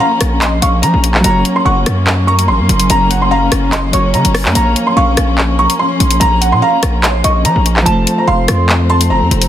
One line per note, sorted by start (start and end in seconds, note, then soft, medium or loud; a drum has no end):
0.00 1.21 F3 medium
0.00 1.17 A#3 medium
0.00 7.82 A#3 medium
0.00 1.21 C#4 medium
0.00 1.19 A#4 medium
0.00 1.21 C#5 medium
0.00 1.25 F5 medium
0.00 0.39 F5 medium
0.00 0.39 A#5 medium
0.21 0.61 A#1 loud
0.21 cross-stick medium
0.21 closed hi-hat medium
0.41 0.61 D#5 medium
0.41 0.58 C6 medium
0.41 clap loud
0.41 closed hi-hat medium
0.62 0.84 A#1 loud
0.62 0.82 F5 medium
0.62 0.79 C#6 medium
0.62 closed hi-hat medium
0.82 0.93 F3 loud
0.82 1.21 A#5 medium
0.82 closed hi-hat medium
0.94 1.23 A#1 loud
1.04 closed hi-hat medium
1.14 clap medium
1.19 3.89 F#3 medium
1.19 3.88 F#4 medium
1.24 1.44 F#1 loud
1.24 4.52 F#3 medium
1.24 7.82 C#4 medium
1.24 3.90 A#4 medium
1.24 1.54 A#5 loud
1.24 closed hi-hat medium
1.29 3.92 C#5 medium
1.45 closed hi-hat medium
1.56 1.64 C6 medium
1.65 1.85 F#1 loud
1.65 2.24 F#5 medium
1.65 2.24 C#6 medium
1.86 2.50 F#2 loud
1.86 cross-stick medium
1.86 closed hi-hat medium
2.07 clap loud
2.27 2.86 A#5 medium
2.27 2.44 C#6 medium
2.39 closed hi-hat medium
2.48 2.61 A1 loud
2.48 2.87 C6 medium
2.59 2.69 F#2 loud
2.69 2.89 F#1 loud
2.69 closed hi-hat medium
2.80 closed hi-hat medium
2.90 3.49 F#1 loud
2.90 3.20 A#5 loud
2.90 closed hi-hat medium
3.10 3.30 F#5 medium
3.10 closed hi-hat medium
3.22 3.29 C6 medium
3.31 3.70 F5 medium
3.31 3.70 A#5 medium
3.52 3.92 F#1 loud
3.52 cross-stick medium
3.52 closed hi-hat medium
3.73 3.92 D#5 medium
3.73 3.89 C6 medium
3.73 clap loud
3.73 closed hi-hat medium
3.91 4.15 F#1 loud
3.91 4.60 F#3 medium
3.91 4.67 F#4 soft
3.91 4.54 A#4 medium
3.91 4.52 C#5 medium
3.91 4.10 C#6 medium
3.91 closed hi-hat medium
3.96 4.58 C#5 medium
4.14 4.24 C#3 loud
4.14 4.53 A#5 medium
4.14 closed hi-hat soft
4.25 4.47 F#1 loud
4.25 closed hi-hat medium
4.35 cross-stick loud
4.35 open hi-hat medium
4.45 4.55 F#2 loud
4.45 clap medium
4.51 7.80 A#3 medium
4.51 7.82 A#4 medium
4.55 4.75 A#1 loud
4.55 9.48 F3 medium
4.55 7.84 C#5 medium
4.55 4.85 A#5 loud
4.55 closed hi-hat medium
4.61 7.85 F5 medium
4.76 closed hi-hat medium
4.87 4.95 C6 medium
4.96 5.17 A#1 loud
4.96 5.55 F5 loud
4.96 5.55 C#6 medium
5.17 5.68 A#1 loud
5.17 cross-stick medium
5.17 closed hi-hat medium
5.38 clap loud
5.59 6.17 A#5 medium
5.59 5.75 C#6 medium
5.70 closed hi-hat medium
5.79 6.18 C6 medium
6.00 6.20 A#1 loud
6.00 closed hi-hat medium
6.11 closed hi-hat medium
6.20 6.54 A#1 loud
6.20 6.50 A#5 loud
6.20 closed hi-hat medium
6.41 6.61 F#5 medium
6.41 closed hi-hat medium
6.52 6.62 A#2 loud
6.52 6.60 C6 medium
6.62 7.01 F5 medium
6.62 7.01 A#5 medium
6.83 7.23 A#1 loud
6.83 cross-stick medium
6.83 closed hi-hat medium
7.03 7.23 C#5 medium
7.03 7.20 C6 medium
7.03 clap loud
7.03 closed hi-hat medium
7.24 7.46 A#1 loud
7.24 7.44 D#5 medium
7.24 7.41 C#6 medium
7.24 closed hi-hat medium
7.45 7.55 F3 loud
7.45 7.84 A#5 medium
7.45 closed hi-hat medium
7.56 7.85 A#1 loud
7.66 closed hi-hat medium
7.76 clap medium
7.82 9.48 F3 medium
7.82 9.48 F4 medium
7.86 8.06 F1 loud
7.86 9.48 A3 medium
7.86 9.48 C4 medium
7.86 8.16 A5 loud
7.86 closed hi-hat medium
7.92 9.48 C5 medium
8.07 closed hi-hat medium
8.18 8.26 A#5 medium
8.28 8.48 F1 loud
8.28 8.86 F5 medium
8.28 8.86 C6 medium
8.48 9.12 F2 loud
8.48 cross-stick medium
8.48 closed hi-hat medium
8.69 clap loud
8.90 9.48 A5 medium
8.90 9.06 C6 medium
9.01 closed hi-hat medium
9.10 9.23 F#1 loud
9.10 9.48 A#5 medium
9.21 9.31 F2 loud
9.31 9.48 F1 loud
9.31 closed hi-hat medium
9.42 closed hi-hat medium